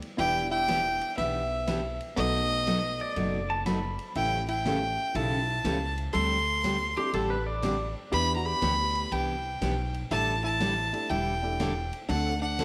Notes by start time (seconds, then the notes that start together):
0.02 ride
0.18 E1 E3 G3 B3 D4 E4 G4 G5, kick, ride
0.51 E4 G5
0.68 E3 B3 D4 G4, kick, snare, hi-hat pedal, ride
1.01 ride
1.18 B1 E3 B3 D4 G4 E5, kick, ride
1.67 E3 B3 D4 G4, kick, snare, hi-hat pedal, ride
2.00 ride
2.16 B1 B2 F#3 A3 B3 D#4 F#4 A4 D#5, kick, ride
2.67 B2 F#3 A3 D#4 F#4, kick, snare, hi-hat pedal, ride
3.00 D5, ride
3.16 F#1 B2 F#3 A3 D#4 F#4, kick, ride
3.50 A5
3.66 B2 F#3 A3 D#4 F#4 B5, kick, snare, hi-hat pedal, ride
3.99 ride
4.15 A1 C#3 E3 A3 C#4 E4 G4 G5, kick, ride
4.48 E4 G5, ride
4.64 C#3 E3 A3 C#4 E4 G4 A4, kick, snare, hi-hat pedal
5.15 B1 C#3 E3 A3 C#4 E4 G4 A5, kick, ride
5.64 C#2 C#3 E3 A3 C#4 G4, kick, snare, hi-hat pedal, ride
5.98 ride
6.13 D2 D3 G3 C4 D4 G4 A4 C6, kick, ride
6.64 D3 G3 C4 D4 G4, kick, snare, hi-hat pedal, ride
6.96 C4 D4 E4 G4 A4, ride
7.13 A1 D3 G3 C4 D4 G4 A4, kick, ride
7.30 B4
7.47 D5
7.62 D3 G3 C4 D4 G4, kick, snare, hi-hat pedal, ride
8.12 E2 E3 B3 D4 E4 G4 B4 B5, kick, ride
8.36 F#4 A#5
8.45 G4 B5
8.62 D2 E3 B3 D4 G4, kick, snare, hi-hat pedal, ride
8.95 ride
9.12 C2 E3 B3 D4 E4 G4 G5, kick, ride
9.61 B1 E3 B3 D4 G4, kick, snare, hi-hat pedal, ride
9.94 ride
10.11 A1 D3 G3 D4 E4 A4 A5, kick, ride
10.44 E4 A5
10.60 D3 G3 D4 E4 A4, kick, snare, hi-hat pedal, ride
10.92 A3 D4 E4 G4 A4, ride
11.10 E1 D3 G3 D4 E4 A4 G5, kick, ride
11.42 A3 D4 E4 G4 A4
11.60 D3 G3 D4 E4 A4, kick, snare, hi-hat pedal, ride
11.93 ride
12.09 D2 D3 A3 C4 D4 F#4 A4 F#5, kick, ride
12.42 D4 F#5
12.59 D3 A3 C4 F#4 A4, kick, snare, hi-hat pedal, ride